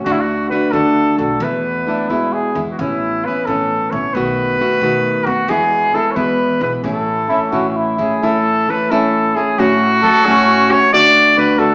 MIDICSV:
0, 0, Header, 1, 5, 480
1, 0, Start_track
1, 0, Key_signature, 3, "major"
1, 0, Tempo, 455927
1, 60, Time_signature, 6, 3, 24, 8
1, 3900, Tempo, 447094
1, 7260, Tempo, 460829
1, 9660, Tempo, 445765
1, 12468, End_track
2, 0, Start_track
2, 0, Title_t, "Trumpet"
2, 0, Program_c, 0, 56
2, 52, Note_on_c, 0, 66, 91
2, 125, Note_on_c, 0, 64, 79
2, 140, Note_off_c, 0, 66, 0
2, 214, Note_on_c, 0, 66, 84
2, 230, Note_off_c, 0, 64, 0
2, 518, Note_off_c, 0, 66, 0
2, 525, Note_on_c, 0, 71, 91
2, 755, Note_on_c, 0, 69, 90
2, 771, Note_off_c, 0, 71, 0
2, 1238, Note_off_c, 0, 69, 0
2, 1246, Note_on_c, 0, 69, 76
2, 1500, Note_on_c, 0, 71, 83
2, 1516, Note_off_c, 0, 69, 0
2, 2458, Note_off_c, 0, 71, 0
2, 2856, Note_on_c, 0, 66, 49
2, 2939, Note_on_c, 0, 64, 85
2, 2955, Note_off_c, 0, 66, 0
2, 3420, Note_on_c, 0, 71, 83
2, 3436, Note_off_c, 0, 64, 0
2, 3640, Note_on_c, 0, 69, 76
2, 3656, Note_off_c, 0, 71, 0
2, 4121, Note_on_c, 0, 73, 83
2, 4137, Note_off_c, 0, 69, 0
2, 4367, Note_on_c, 0, 71, 101
2, 4384, Note_off_c, 0, 73, 0
2, 5566, Note_on_c, 0, 66, 87
2, 5582, Note_off_c, 0, 71, 0
2, 5821, Note_on_c, 0, 68, 100
2, 5837, Note_off_c, 0, 66, 0
2, 6302, Note_on_c, 0, 69, 88
2, 6318, Note_off_c, 0, 68, 0
2, 6488, Note_on_c, 0, 73, 59
2, 6504, Note_off_c, 0, 69, 0
2, 6531, Note_on_c, 0, 71, 93
2, 6547, Note_off_c, 0, 73, 0
2, 7016, Note_off_c, 0, 71, 0
2, 7035, Note_on_c, 0, 71, 80
2, 7139, Note_off_c, 0, 71, 0
2, 7260, Note_on_c, 0, 69, 80
2, 8183, Note_off_c, 0, 69, 0
2, 8466, Note_on_c, 0, 68, 71
2, 8723, Note_on_c, 0, 69, 91
2, 8738, Note_off_c, 0, 68, 0
2, 9205, Note_on_c, 0, 71, 84
2, 9221, Note_off_c, 0, 69, 0
2, 9421, Note_on_c, 0, 69, 81
2, 9436, Note_off_c, 0, 71, 0
2, 9892, Note_on_c, 0, 68, 84
2, 9909, Note_off_c, 0, 69, 0
2, 10146, Note_on_c, 0, 66, 104
2, 10162, Note_off_c, 0, 68, 0
2, 11358, Note_on_c, 0, 73, 104
2, 11374, Note_off_c, 0, 66, 0
2, 11583, Note_off_c, 0, 73, 0
2, 11590, Note_on_c, 0, 74, 127
2, 12033, Note_off_c, 0, 74, 0
2, 12074, Note_on_c, 0, 71, 99
2, 12296, Note_on_c, 0, 69, 92
2, 12312, Note_off_c, 0, 71, 0
2, 12468, Note_off_c, 0, 69, 0
2, 12468, End_track
3, 0, Start_track
3, 0, Title_t, "Trumpet"
3, 0, Program_c, 1, 56
3, 1971, Note_on_c, 1, 62, 68
3, 2200, Note_on_c, 1, 64, 78
3, 2215, Note_off_c, 1, 62, 0
3, 2454, Note_on_c, 1, 68, 76
3, 2470, Note_off_c, 1, 64, 0
3, 2740, Note_off_c, 1, 68, 0
3, 7732, Note_on_c, 1, 64, 77
3, 7841, Note_off_c, 1, 64, 0
3, 7968, Note_on_c, 1, 66, 80
3, 8131, Note_off_c, 1, 66, 0
3, 8156, Note_on_c, 1, 66, 51
3, 8227, Note_on_c, 1, 64, 71
3, 8243, Note_off_c, 1, 66, 0
3, 8708, Note_off_c, 1, 64, 0
3, 10618, Note_on_c, 1, 69, 107
3, 10869, Note_on_c, 1, 61, 93
3, 10885, Note_off_c, 1, 69, 0
3, 11468, Note_off_c, 1, 61, 0
3, 12468, End_track
4, 0, Start_track
4, 0, Title_t, "Nylon-string guitar"
4, 0, Program_c, 2, 24
4, 59, Note_on_c, 2, 50, 66
4, 65, Note_on_c, 2, 57, 71
4, 65, Note_on_c, 2, 62, 81
4, 72, Note_on_c, 2, 66, 76
4, 524, Note_off_c, 2, 50, 0
4, 531, Note_off_c, 2, 57, 0
4, 534, Note_off_c, 2, 62, 0
4, 536, Note_on_c, 2, 50, 64
4, 538, Note_off_c, 2, 66, 0
4, 544, Note_on_c, 2, 57, 58
4, 547, Note_on_c, 2, 62, 67
4, 551, Note_on_c, 2, 66, 57
4, 760, Note_off_c, 2, 66, 0
4, 761, Note_off_c, 2, 62, 0
4, 763, Note_off_c, 2, 57, 0
4, 768, Note_off_c, 2, 50, 0
4, 772, Note_on_c, 2, 66, 61
4, 774, Note_on_c, 2, 62, 62
4, 775, Note_on_c, 2, 57, 54
4, 780, Note_on_c, 2, 50, 52
4, 1235, Note_off_c, 2, 66, 0
4, 1247, Note_off_c, 2, 62, 0
4, 1248, Note_off_c, 2, 57, 0
4, 1248, Note_on_c, 2, 66, 50
4, 1250, Note_off_c, 2, 50, 0
4, 1262, Note_on_c, 2, 62, 42
4, 1266, Note_on_c, 2, 57, 36
4, 1484, Note_off_c, 2, 57, 0
4, 1484, Note_off_c, 2, 66, 0
4, 1487, Note_on_c, 2, 40, 62
4, 1491, Note_off_c, 2, 62, 0
4, 1493, Note_on_c, 2, 47, 65
4, 1496, Note_on_c, 2, 52, 57
4, 1497, Note_on_c, 2, 57, 72
4, 1500, Note_on_c, 2, 59, 64
4, 1501, Note_on_c, 2, 64, 73
4, 1963, Note_off_c, 2, 52, 0
4, 1965, Note_off_c, 2, 57, 0
4, 1967, Note_off_c, 2, 40, 0
4, 1967, Note_on_c, 2, 52, 53
4, 1970, Note_off_c, 2, 47, 0
4, 1978, Note_off_c, 2, 59, 0
4, 1978, Note_on_c, 2, 57, 47
4, 1979, Note_off_c, 2, 64, 0
4, 1982, Note_on_c, 2, 59, 54
4, 1984, Note_on_c, 2, 64, 58
4, 2204, Note_off_c, 2, 64, 0
4, 2205, Note_off_c, 2, 52, 0
4, 2205, Note_off_c, 2, 59, 0
4, 2210, Note_off_c, 2, 57, 0
4, 2216, Note_on_c, 2, 64, 61
4, 2218, Note_on_c, 2, 56, 56
4, 2218, Note_on_c, 2, 59, 60
4, 2223, Note_on_c, 2, 52, 58
4, 2224, Note_on_c, 2, 47, 49
4, 2227, Note_on_c, 2, 40, 47
4, 2682, Note_off_c, 2, 64, 0
4, 2694, Note_off_c, 2, 56, 0
4, 2695, Note_on_c, 2, 64, 46
4, 2696, Note_off_c, 2, 52, 0
4, 2697, Note_off_c, 2, 59, 0
4, 2701, Note_off_c, 2, 47, 0
4, 2702, Note_on_c, 2, 59, 41
4, 2703, Note_off_c, 2, 40, 0
4, 2706, Note_on_c, 2, 56, 47
4, 2709, Note_on_c, 2, 52, 41
4, 2936, Note_off_c, 2, 52, 0
4, 2937, Note_off_c, 2, 64, 0
4, 2940, Note_off_c, 2, 59, 0
4, 2942, Note_off_c, 2, 56, 0
4, 2948, Note_on_c, 2, 45, 63
4, 2948, Note_on_c, 2, 52, 59
4, 2957, Note_on_c, 2, 59, 64
4, 2958, Note_on_c, 2, 61, 62
4, 2965, Note_on_c, 2, 64, 69
4, 3430, Note_off_c, 2, 45, 0
4, 3430, Note_off_c, 2, 52, 0
4, 3435, Note_off_c, 2, 61, 0
4, 3438, Note_off_c, 2, 64, 0
4, 3442, Note_off_c, 2, 59, 0
4, 3442, Note_on_c, 2, 52, 46
4, 3446, Note_on_c, 2, 59, 49
4, 3454, Note_on_c, 2, 61, 53
4, 3454, Note_on_c, 2, 64, 60
4, 3654, Note_off_c, 2, 64, 0
4, 3662, Note_off_c, 2, 61, 0
4, 3663, Note_off_c, 2, 59, 0
4, 3666, Note_off_c, 2, 52, 0
4, 3667, Note_on_c, 2, 64, 59
4, 3674, Note_on_c, 2, 61, 54
4, 3675, Note_on_c, 2, 59, 53
4, 3679, Note_on_c, 2, 52, 53
4, 3681, Note_on_c, 2, 45, 46
4, 4135, Note_off_c, 2, 64, 0
4, 4140, Note_off_c, 2, 61, 0
4, 4148, Note_on_c, 2, 64, 47
4, 4151, Note_off_c, 2, 52, 0
4, 4152, Note_off_c, 2, 45, 0
4, 4153, Note_on_c, 2, 61, 43
4, 4159, Note_off_c, 2, 59, 0
4, 4163, Note_on_c, 2, 59, 41
4, 4379, Note_off_c, 2, 59, 0
4, 4384, Note_off_c, 2, 64, 0
4, 4384, Note_on_c, 2, 51, 72
4, 4386, Note_off_c, 2, 61, 0
4, 4387, Note_on_c, 2, 47, 65
4, 4391, Note_on_c, 2, 57, 79
4, 4392, Note_on_c, 2, 59, 70
4, 4396, Note_on_c, 2, 66, 77
4, 4845, Note_off_c, 2, 51, 0
4, 4856, Note_off_c, 2, 57, 0
4, 4857, Note_on_c, 2, 51, 52
4, 4862, Note_off_c, 2, 66, 0
4, 4865, Note_off_c, 2, 47, 0
4, 4866, Note_off_c, 2, 59, 0
4, 4869, Note_on_c, 2, 57, 62
4, 4871, Note_on_c, 2, 59, 48
4, 4875, Note_on_c, 2, 66, 69
4, 5094, Note_off_c, 2, 66, 0
4, 5098, Note_off_c, 2, 51, 0
4, 5100, Note_off_c, 2, 57, 0
4, 5100, Note_off_c, 2, 59, 0
4, 5107, Note_on_c, 2, 66, 67
4, 5113, Note_on_c, 2, 57, 60
4, 5113, Note_on_c, 2, 59, 61
4, 5114, Note_on_c, 2, 51, 56
4, 5119, Note_on_c, 2, 47, 54
4, 5571, Note_off_c, 2, 66, 0
4, 5582, Note_off_c, 2, 59, 0
4, 5584, Note_on_c, 2, 66, 49
4, 5586, Note_off_c, 2, 57, 0
4, 5588, Note_off_c, 2, 51, 0
4, 5591, Note_off_c, 2, 47, 0
4, 5595, Note_on_c, 2, 59, 50
4, 5598, Note_on_c, 2, 57, 45
4, 5817, Note_off_c, 2, 59, 0
4, 5819, Note_on_c, 2, 40, 65
4, 5821, Note_off_c, 2, 57, 0
4, 5822, Note_off_c, 2, 66, 0
4, 5824, Note_on_c, 2, 47, 60
4, 5825, Note_on_c, 2, 56, 79
4, 5827, Note_on_c, 2, 52, 73
4, 5830, Note_on_c, 2, 59, 81
4, 5836, Note_on_c, 2, 64, 81
4, 6293, Note_off_c, 2, 52, 0
4, 6293, Note_off_c, 2, 59, 0
4, 6294, Note_off_c, 2, 56, 0
4, 6297, Note_on_c, 2, 52, 57
4, 6301, Note_off_c, 2, 40, 0
4, 6303, Note_off_c, 2, 47, 0
4, 6306, Note_off_c, 2, 64, 0
4, 6306, Note_on_c, 2, 59, 59
4, 6307, Note_on_c, 2, 56, 62
4, 6310, Note_on_c, 2, 64, 67
4, 6524, Note_off_c, 2, 64, 0
4, 6530, Note_off_c, 2, 52, 0
4, 6531, Note_off_c, 2, 56, 0
4, 6532, Note_off_c, 2, 59, 0
4, 6537, Note_on_c, 2, 64, 65
4, 6542, Note_on_c, 2, 52, 57
4, 6543, Note_on_c, 2, 56, 58
4, 6545, Note_on_c, 2, 47, 53
4, 6545, Note_on_c, 2, 59, 61
4, 6549, Note_on_c, 2, 40, 52
4, 7016, Note_off_c, 2, 59, 0
4, 7016, Note_off_c, 2, 64, 0
4, 7020, Note_on_c, 2, 64, 51
4, 7022, Note_off_c, 2, 47, 0
4, 7022, Note_off_c, 2, 56, 0
4, 7025, Note_off_c, 2, 40, 0
4, 7029, Note_on_c, 2, 59, 46
4, 7031, Note_off_c, 2, 52, 0
4, 7034, Note_on_c, 2, 56, 39
4, 7036, Note_on_c, 2, 52, 37
4, 7258, Note_off_c, 2, 52, 0
4, 7259, Note_off_c, 2, 64, 0
4, 7263, Note_off_c, 2, 59, 0
4, 7266, Note_off_c, 2, 56, 0
4, 7269, Note_on_c, 2, 45, 72
4, 7270, Note_on_c, 2, 52, 67
4, 7271, Note_on_c, 2, 61, 66
4, 7274, Note_on_c, 2, 64, 74
4, 7275, Note_on_c, 2, 57, 66
4, 7735, Note_off_c, 2, 52, 0
4, 7738, Note_off_c, 2, 57, 0
4, 7739, Note_on_c, 2, 52, 48
4, 7741, Note_off_c, 2, 45, 0
4, 7742, Note_on_c, 2, 57, 50
4, 7744, Note_off_c, 2, 64, 0
4, 7747, Note_off_c, 2, 61, 0
4, 7748, Note_on_c, 2, 64, 53
4, 7751, Note_on_c, 2, 61, 58
4, 7969, Note_off_c, 2, 64, 0
4, 7971, Note_off_c, 2, 61, 0
4, 7977, Note_off_c, 2, 57, 0
4, 7978, Note_off_c, 2, 52, 0
4, 7981, Note_on_c, 2, 64, 65
4, 7983, Note_on_c, 2, 61, 58
4, 7989, Note_on_c, 2, 57, 60
4, 7991, Note_on_c, 2, 52, 55
4, 7992, Note_on_c, 2, 45, 57
4, 8445, Note_off_c, 2, 64, 0
4, 8457, Note_on_c, 2, 64, 50
4, 8467, Note_off_c, 2, 61, 0
4, 8471, Note_on_c, 2, 61, 45
4, 8473, Note_off_c, 2, 45, 0
4, 8473, Note_off_c, 2, 52, 0
4, 8474, Note_off_c, 2, 57, 0
4, 8478, Note_on_c, 2, 57, 39
4, 8700, Note_off_c, 2, 57, 0
4, 8702, Note_off_c, 2, 64, 0
4, 8704, Note_off_c, 2, 61, 0
4, 8709, Note_on_c, 2, 45, 80
4, 8713, Note_on_c, 2, 52, 69
4, 8713, Note_on_c, 2, 57, 67
4, 8717, Note_on_c, 2, 61, 78
4, 8719, Note_on_c, 2, 64, 80
4, 9175, Note_off_c, 2, 52, 0
4, 9188, Note_on_c, 2, 52, 48
4, 9189, Note_off_c, 2, 45, 0
4, 9191, Note_off_c, 2, 64, 0
4, 9192, Note_off_c, 2, 57, 0
4, 9195, Note_off_c, 2, 61, 0
4, 9197, Note_on_c, 2, 57, 59
4, 9199, Note_on_c, 2, 61, 51
4, 9204, Note_on_c, 2, 64, 59
4, 9415, Note_off_c, 2, 64, 0
4, 9419, Note_off_c, 2, 61, 0
4, 9423, Note_off_c, 2, 52, 0
4, 9425, Note_off_c, 2, 57, 0
4, 9428, Note_on_c, 2, 64, 77
4, 9432, Note_on_c, 2, 61, 70
4, 9437, Note_on_c, 2, 57, 55
4, 9440, Note_on_c, 2, 52, 54
4, 9441, Note_on_c, 2, 45, 49
4, 9893, Note_off_c, 2, 64, 0
4, 9903, Note_off_c, 2, 61, 0
4, 9906, Note_on_c, 2, 64, 55
4, 9913, Note_off_c, 2, 52, 0
4, 9914, Note_off_c, 2, 45, 0
4, 9915, Note_off_c, 2, 57, 0
4, 9916, Note_on_c, 2, 61, 46
4, 9919, Note_on_c, 2, 57, 46
4, 10136, Note_off_c, 2, 57, 0
4, 10139, Note_off_c, 2, 61, 0
4, 10140, Note_on_c, 2, 45, 87
4, 10146, Note_off_c, 2, 64, 0
4, 10146, Note_on_c, 2, 54, 77
4, 10149, Note_on_c, 2, 57, 65
4, 10152, Note_on_c, 2, 61, 84
4, 10153, Note_on_c, 2, 66, 83
4, 10622, Note_off_c, 2, 54, 0
4, 10626, Note_on_c, 2, 54, 70
4, 10627, Note_off_c, 2, 57, 0
4, 10627, Note_off_c, 2, 61, 0
4, 10628, Note_off_c, 2, 45, 0
4, 10631, Note_on_c, 2, 57, 61
4, 10640, Note_off_c, 2, 66, 0
4, 10640, Note_on_c, 2, 61, 60
4, 10644, Note_on_c, 2, 66, 68
4, 10856, Note_off_c, 2, 66, 0
4, 10862, Note_off_c, 2, 61, 0
4, 10867, Note_off_c, 2, 54, 0
4, 10867, Note_off_c, 2, 57, 0
4, 10869, Note_on_c, 2, 66, 75
4, 10875, Note_on_c, 2, 61, 66
4, 10880, Note_on_c, 2, 57, 80
4, 10883, Note_on_c, 2, 54, 67
4, 10884, Note_on_c, 2, 45, 74
4, 11335, Note_off_c, 2, 66, 0
4, 11344, Note_off_c, 2, 61, 0
4, 11347, Note_on_c, 2, 66, 62
4, 11356, Note_off_c, 2, 54, 0
4, 11357, Note_off_c, 2, 45, 0
4, 11357, Note_on_c, 2, 61, 57
4, 11363, Note_off_c, 2, 57, 0
4, 11367, Note_on_c, 2, 57, 46
4, 11580, Note_off_c, 2, 57, 0
4, 11585, Note_off_c, 2, 66, 0
4, 11589, Note_on_c, 2, 50, 82
4, 11590, Note_off_c, 2, 61, 0
4, 11593, Note_on_c, 2, 57, 81
4, 11600, Note_on_c, 2, 66, 103
4, 11601, Note_on_c, 2, 62, 89
4, 12046, Note_off_c, 2, 50, 0
4, 12058, Note_off_c, 2, 57, 0
4, 12059, Note_on_c, 2, 50, 68
4, 12060, Note_off_c, 2, 62, 0
4, 12069, Note_off_c, 2, 66, 0
4, 12071, Note_on_c, 2, 57, 63
4, 12073, Note_on_c, 2, 62, 63
4, 12082, Note_on_c, 2, 66, 65
4, 12283, Note_off_c, 2, 66, 0
4, 12287, Note_off_c, 2, 62, 0
4, 12291, Note_off_c, 2, 57, 0
4, 12296, Note_off_c, 2, 50, 0
4, 12296, Note_on_c, 2, 66, 73
4, 12300, Note_on_c, 2, 62, 70
4, 12304, Note_on_c, 2, 57, 60
4, 12309, Note_on_c, 2, 50, 53
4, 12468, Note_off_c, 2, 50, 0
4, 12468, Note_off_c, 2, 57, 0
4, 12468, Note_off_c, 2, 62, 0
4, 12468, Note_off_c, 2, 66, 0
4, 12468, End_track
5, 0, Start_track
5, 0, Title_t, "Upright bass"
5, 0, Program_c, 3, 32
5, 63, Note_on_c, 3, 38, 94
5, 523, Note_off_c, 3, 38, 0
5, 771, Note_on_c, 3, 50, 87
5, 1080, Note_off_c, 3, 50, 0
5, 1246, Note_on_c, 3, 35, 80
5, 1400, Note_off_c, 3, 35, 0
5, 1477, Note_on_c, 3, 40, 98
5, 1947, Note_off_c, 3, 40, 0
5, 2208, Note_on_c, 3, 40, 74
5, 2523, Note_off_c, 3, 40, 0
5, 2688, Note_on_c, 3, 40, 82
5, 2847, Note_off_c, 3, 40, 0
5, 2937, Note_on_c, 3, 33, 96
5, 3408, Note_off_c, 3, 33, 0
5, 3655, Note_on_c, 3, 45, 83
5, 3968, Note_off_c, 3, 45, 0
5, 4135, Note_on_c, 3, 33, 81
5, 4293, Note_off_c, 3, 33, 0
5, 4374, Note_on_c, 3, 35, 85
5, 4844, Note_off_c, 3, 35, 0
5, 5088, Note_on_c, 3, 47, 84
5, 5405, Note_off_c, 3, 47, 0
5, 5576, Note_on_c, 3, 39, 86
5, 5733, Note_off_c, 3, 39, 0
5, 5809, Note_on_c, 3, 40, 96
5, 6280, Note_off_c, 3, 40, 0
5, 6537, Note_on_c, 3, 52, 85
5, 6850, Note_off_c, 3, 52, 0
5, 7018, Note_on_c, 3, 35, 89
5, 7174, Note_off_c, 3, 35, 0
5, 7262, Note_on_c, 3, 33, 86
5, 7728, Note_off_c, 3, 33, 0
5, 7976, Note_on_c, 3, 45, 72
5, 8294, Note_off_c, 3, 45, 0
5, 8464, Note_on_c, 3, 33, 84
5, 8621, Note_off_c, 3, 33, 0
5, 12468, End_track
0, 0, End_of_file